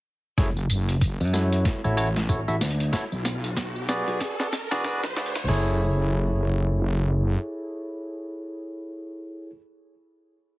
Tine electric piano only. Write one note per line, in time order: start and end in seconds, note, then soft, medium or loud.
0.38 0.48 E4 medium
0.38 0.48 G#4 medium
0.38 0.48 A4 medium
0.38 0.48 C#5 loud
1.33 1.80 E4 medium
1.33 1.80 F#4 medium
1.33 1.80 A4 medium
1.33 1.80 C#5 medium
1.84 1.95 E4 medium
1.84 1.95 F#4 medium
1.84 1.95 A4 medium
1.84 1.95 C#5 medium
1.97 2.07 E4 medium
1.97 2.07 F#4 medium
1.97 2.07 A4 medium
1.97 2.07 C#5 loud
2.29 2.39 E4 medium
2.29 2.39 F#4 medium
2.29 2.39 A4 medium
2.29 2.39 C#5 medium
2.48 2.55 E4 medium
2.48 2.55 F#4 medium
2.48 2.55 A4 medium
2.48 2.55 E5 medium
2.93 3.03 E4 medium
2.93 3.03 F#4 medium
2.93 3.03 A4 medium
2.93 3.03 C#5 loud
3.89 4.35 F#4 medium
3.89 4.35 G#4 medium
3.89 4.35 B4 medium
3.89 4.35 D5 loud
4.39 4.47 F#4 medium
4.39 4.47 G#4 medium
4.39 4.47 B4 medium
4.39 4.47 D5 medium
4.71 4.82 F#4 loud
4.71 4.82 G#4 medium
4.71 4.82 B4 medium
4.71 4.82 D5 loud
4.84 5.01 F#4 medium
4.84 5.01 G#4 medium
4.84 5.01 B4 medium
4.84 5.01 D5 medium
5.16 5.33 F#4 medium
5.16 5.33 G#4 medium
5.16 5.33 B4 medium
5.16 5.33 D5 medium
5.48 9.50 E4 medium
5.48 9.50 G#4 medium
5.48 9.50 A4 medium
5.48 9.50 C#5 medium